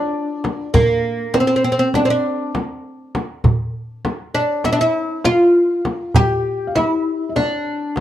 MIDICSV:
0, 0, Header, 1, 5, 480
1, 0, Start_track
1, 0, Tempo, 601202
1, 592, Time_signature, 9, 3, 24, 8
1, 6390, End_track
2, 0, Start_track
2, 0, Title_t, "Felt piano"
2, 0, Program_c, 0, 0
2, 0, Note_on_c, 0, 74, 79
2, 590, Note_on_c, 0, 70, 73
2, 605, Note_off_c, 0, 74, 0
2, 1071, Note_on_c, 0, 72, 76
2, 1086, Note_off_c, 0, 70, 0
2, 1551, Note_on_c, 0, 74, 82
2, 1566, Note_off_c, 0, 72, 0
2, 1647, Note_off_c, 0, 74, 0
2, 1659, Note_on_c, 0, 74, 69
2, 2060, Note_off_c, 0, 74, 0
2, 3474, Note_on_c, 0, 74, 68
2, 3711, Note_on_c, 0, 76, 81
2, 3721, Note_off_c, 0, 74, 0
2, 3810, Note_off_c, 0, 76, 0
2, 3822, Note_on_c, 0, 76, 76
2, 4187, Note_on_c, 0, 77, 77
2, 4203, Note_off_c, 0, 76, 0
2, 4915, Note_on_c, 0, 79, 82
2, 4933, Note_off_c, 0, 77, 0
2, 5328, Note_on_c, 0, 77, 58
2, 5351, Note_off_c, 0, 79, 0
2, 5389, Note_off_c, 0, 77, 0
2, 5394, Note_on_c, 0, 76, 73
2, 5811, Note_off_c, 0, 76, 0
2, 5823, Note_on_c, 0, 76, 47
2, 5874, Note_on_c, 0, 74, 68
2, 5877, Note_off_c, 0, 76, 0
2, 6390, Note_off_c, 0, 74, 0
2, 6390, End_track
3, 0, Start_track
3, 0, Title_t, "Oud"
3, 0, Program_c, 1, 24
3, 0, Note_on_c, 1, 62, 97
3, 552, Note_off_c, 1, 62, 0
3, 590, Note_on_c, 1, 58, 88
3, 1068, Note_on_c, 1, 60, 82
3, 1086, Note_off_c, 1, 58, 0
3, 1110, Note_off_c, 1, 60, 0
3, 1119, Note_on_c, 1, 60, 61
3, 1166, Note_off_c, 1, 60, 0
3, 1175, Note_on_c, 1, 60, 70
3, 1236, Note_off_c, 1, 60, 0
3, 1246, Note_on_c, 1, 60, 64
3, 1303, Note_off_c, 1, 60, 0
3, 1312, Note_on_c, 1, 60, 72
3, 1363, Note_off_c, 1, 60, 0
3, 1373, Note_on_c, 1, 60, 65
3, 1421, Note_off_c, 1, 60, 0
3, 1430, Note_on_c, 1, 60, 74
3, 1493, Note_off_c, 1, 60, 0
3, 1557, Note_on_c, 1, 62, 82
3, 1607, Note_off_c, 1, 62, 0
3, 1638, Note_on_c, 1, 60, 70
3, 1675, Note_off_c, 1, 60, 0
3, 1678, Note_on_c, 1, 62, 83
3, 2070, Note_off_c, 1, 62, 0
3, 3469, Note_on_c, 1, 62, 80
3, 3708, Note_off_c, 1, 62, 0
3, 3711, Note_on_c, 1, 64, 88
3, 3770, Note_off_c, 1, 64, 0
3, 3773, Note_on_c, 1, 62, 78
3, 3827, Note_off_c, 1, 62, 0
3, 3839, Note_on_c, 1, 64, 92
3, 4190, Note_off_c, 1, 64, 0
3, 4193, Note_on_c, 1, 65, 104
3, 4882, Note_off_c, 1, 65, 0
3, 4915, Note_on_c, 1, 67, 108
3, 5391, Note_off_c, 1, 67, 0
3, 5394, Note_on_c, 1, 64, 88
3, 5842, Note_off_c, 1, 64, 0
3, 5877, Note_on_c, 1, 62, 73
3, 6390, Note_off_c, 1, 62, 0
3, 6390, End_track
4, 0, Start_track
4, 0, Title_t, "Darbuka"
4, 352, Note_on_c, 9, 63, 70
4, 432, Note_off_c, 9, 63, 0
4, 597, Note_on_c, 9, 64, 92
4, 676, Note_off_c, 9, 64, 0
4, 1073, Note_on_c, 9, 63, 77
4, 1152, Note_off_c, 9, 63, 0
4, 1310, Note_on_c, 9, 62, 28
4, 1389, Note_off_c, 9, 62, 0
4, 1550, Note_on_c, 9, 63, 73
4, 1630, Note_off_c, 9, 63, 0
4, 2033, Note_on_c, 9, 63, 73
4, 2113, Note_off_c, 9, 63, 0
4, 2515, Note_on_c, 9, 63, 74
4, 2594, Note_off_c, 9, 63, 0
4, 2751, Note_on_c, 9, 64, 84
4, 2831, Note_off_c, 9, 64, 0
4, 3232, Note_on_c, 9, 63, 76
4, 3312, Note_off_c, 9, 63, 0
4, 3471, Note_on_c, 9, 62, 27
4, 3551, Note_off_c, 9, 62, 0
4, 3707, Note_on_c, 9, 63, 75
4, 3787, Note_off_c, 9, 63, 0
4, 4187, Note_on_c, 9, 63, 72
4, 4267, Note_off_c, 9, 63, 0
4, 4671, Note_on_c, 9, 63, 67
4, 4751, Note_off_c, 9, 63, 0
4, 4906, Note_on_c, 9, 64, 91
4, 4986, Note_off_c, 9, 64, 0
4, 5392, Note_on_c, 9, 63, 64
4, 5472, Note_off_c, 9, 63, 0
4, 5876, Note_on_c, 9, 63, 69
4, 5956, Note_off_c, 9, 63, 0
4, 6114, Note_on_c, 9, 62, 27
4, 6194, Note_off_c, 9, 62, 0
4, 6354, Note_on_c, 9, 63, 66
4, 6390, Note_off_c, 9, 63, 0
4, 6390, End_track
5, 0, Start_track
5, 0, Title_t, "Frame drum"
5, 357, Note_on_c, 9, 64, 69
5, 437, Note_off_c, 9, 64, 0
5, 593, Note_on_c, 9, 64, 85
5, 673, Note_off_c, 9, 64, 0
5, 1072, Note_on_c, 9, 64, 66
5, 1152, Note_off_c, 9, 64, 0
5, 1549, Note_on_c, 9, 64, 68
5, 1629, Note_off_c, 9, 64, 0
5, 2035, Note_on_c, 9, 64, 67
5, 2114, Note_off_c, 9, 64, 0
5, 2514, Note_on_c, 9, 64, 66
5, 2594, Note_off_c, 9, 64, 0
5, 2747, Note_on_c, 9, 64, 78
5, 2827, Note_off_c, 9, 64, 0
5, 3231, Note_on_c, 9, 64, 64
5, 3311, Note_off_c, 9, 64, 0
5, 3708, Note_on_c, 9, 64, 61
5, 3788, Note_off_c, 9, 64, 0
5, 4189, Note_on_c, 9, 64, 71
5, 4269, Note_off_c, 9, 64, 0
5, 4671, Note_on_c, 9, 64, 66
5, 4751, Note_off_c, 9, 64, 0
5, 4914, Note_on_c, 9, 64, 84
5, 4994, Note_off_c, 9, 64, 0
5, 5405, Note_on_c, 9, 64, 71
5, 5485, Note_off_c, 9, 64, 0
5, 5884, Note_on_c, 9, 64, 61
5, 5964, Note_off_c, 9, 64, 0
5, 6365, Note_on_c, 9, 64, 73
5, 6390, Note_off_c, 9, 64, 0
5, 6390, End_track
0, 0, End_of_file